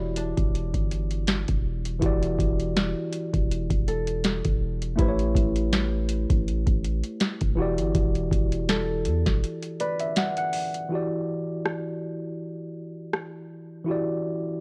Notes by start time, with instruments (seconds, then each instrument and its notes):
Already playing: 808-style bass E1, tine electric piano E3 E4 F#4 G4 C#5 D5, kora E4
0.16 kora D4, closed hi-hat
0.37 808-style bass E1, kick, closed hi-hat
0.55 closed hi-hat
0.74 808-style bass G1, kick, closed hi-hat
0.91 closed hi-hat
1.11 closed hi-hat
1.27 snare, closed hi-hat
1.48 808-style bass E1, kick, closed hi-hat
1.85 closed hi-hat
1.99 808-style bass E1, tine electric piano E3 E4 F#4, kick, closed hi-hat
2.04 tine electric piano G4 D5
2.23 closed hi-hat
2.39 808-style bass E1, kick, closed hi-hat
2.60 closed hi-hat
2.76 snare, closed hi-hat
3.13 closed hi-hat
3.34 808-style bass E1, kick, closed hi-hat
3.52 closed hi-hat
3.70 808-style bass E1, kick, closed hi-hat
3.88 kora A4, closed hi-hat
4.07 closed hi-hat
4.24 snare, closed hi-hat
4.45 808-style bass E1, kick, closed hi-hat
4.82 closed hi-hat
4.96 808-style bass A1, tine electric piano A3 E4 G4, kora E4, kick, closed hi-hat
5.01 tine electric piano B4 C5
5.09 tine electric piano C#5
5.19 closed hi-hat
5.35 808-style bass A1, kick, closed hi-hat
5.56 closed hi-hat
5.73 snare, closed hi-hat
6.09 closed hi-hat
6.30 808-style bass A1, kick, closed hi-hat
6.48 closed hi-hat
6.67 808-style bass A1, kick, closed hi-hat
6.84 closed hi-hat
7.03 closed hi-hat
7.20 snare, closed hi-hat
7.41 808-style bass E1, kick, closed hi-hat
7.55 tine electric piano E3 E4 F#4
7.60 tine electric piano G4 D5
7.78 808-style bass G1, closed hi-hat
7.95 808-style bass E1, kick, closed hi-hat
8.15 closed hi-hat
8.31 808-style bass E1, kick, closed hi-hat
8.52 closed hi-hat
8.69 kora A4, snare, closed hi-hat
9.05 808-style bass E2, closed hi-hat
9.26 808-style bass E1, kick, snare, closed hi-hat
9.44 closed hi-hat
9.63 closed hi-hat
9.80 kora B4, tine electric piano D5, closed hi-hat
10.00 tine electric piano E5, closed hi-hat
10.16 tine electric piano F#5, snare, closed hi-hat
10.37 tine electric piano F#5, closed hi-hat
10.53 open hi-hat
10.74 closed hi-hat
10.89 tine electric piano E3 E4 F#4
10.94 tine electric piano G4 D5
11.66 cross-stick
13.13 cross-stick
13.84 tine electric piano E3 E4 F#4
13.89 tine electric piano G4 D5